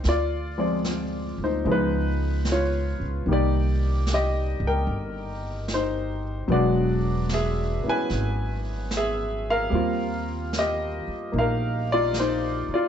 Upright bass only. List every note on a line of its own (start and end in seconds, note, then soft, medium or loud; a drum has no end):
0.05 1.35 D2 medium
1.38 1.63 D2 medium
1.65 2.96 C#2 medium
3.00 3.25 C#2 medium
3.26 4.57 C2 medium
4.60 4.85 C#2 medium
4.87 6.45 G1 medium
6.48 7.79 E1 medium
7.84 muted upright bass stroke soft
8.10 9.68 G#1 medium
9.72 11.02 D#2 medium
11.08 muted upright bass stroke soft
11.33 12.64 A#1 medium
12.69 muted upright bass stroke soft